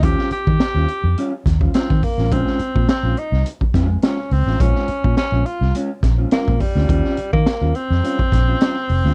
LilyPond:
<<
  \new Staff \with { instrumentName = "Clean electric guitar" } { \time 4/4 \key bes \dorian \tempo 4 = 105 <g des' f' c''>8 r8. <g des' f' c''>16 r8 <g des' f' des''>16 r8 <g des' f' c''>16 <g des' f' c''>16 r8 <g des' f' c''>16 | <aes des' f' c''>8 r8. <aes des' f' c''>16 r4 <aes des' f' c''>16 r16 <aes des' f' c''>16 r8 <aes des' f' c''>16 | <aes des' f' c''>8 r8. <aes des' f' c''>16 r8 <aes des' f' des''>16 r8 <aes des' f' c''>16 <aes des' f' c''>16 r8 <aes des' f' c''>16 | <g des' f' c''>8 r8. <g des' f' c''>16 r8 <g des' f' des''>16 r8 <g des' f' c''>16 <g des' f' c''>16 r8 <g des' f' c''>16 | }
  \new Staff \with { instrumentName = "Tenor saxophone" } { \time 4/4 \key bes \dorian g'8 g'2 r8 c'8 bes8 | c'4 c'8 ees'8 r4 des'8 c'8 | des'4 des'8 f'8 r4 bes8 g8~ | g8. bes8. c'2~ c'8 | }
  \new Staff \with { instrumentName = "Fingered electric bass" } { \clef bass \time 4/4 \key bes \dorian ees,16 r8 ees16 r16 ees,16 r16 f,16 r8 ees,8 r16 ees16 r16 a,,16 | bes,,16 r8 bes,16 r16 bes,,16 r16 c,16 r8 f,8 r8 des,16 a,,16 | bes,,16 r8 bes,16 r16 bes,,16 r16 c,16 r8 bes,,8 r16 bes,16 r16 d,16 | ees,16 r8 ees16 r16 ees,16 r16 f,16 r8 bes,,8 r8 f,,16 d,16 | }
  \new DrumStaff \with { instrumentName = "Drums" } \drummode { \time 4/4 <hh bd>16 sn16 hh16 bd16 <hh sn>8 hh8 hh8 <hh bd sn>16 bd16 <hh sn>16 bd16 <hho bd>16 sn16 | <hh bd>16 sn16 hh16 bd16 <hh sn>8 hh16 sn16 hh16 bd16 <hh bd sn>8 <hh sn>8 hho16 sn16 | <hh bd>16 sn16 hh16 bd16 <hh sn>8 hh16 sn16 hh8 <hh bd sn>8 <hh sn>16 bd16 <hho bd>16 sn16 | <hh bd>16 sn16 hh16 bd16 <hh sn>8 hh16 sn16 hh16 bd16 <hh bd sn>8 <hh sn>8 hho16 sn16 | }
>>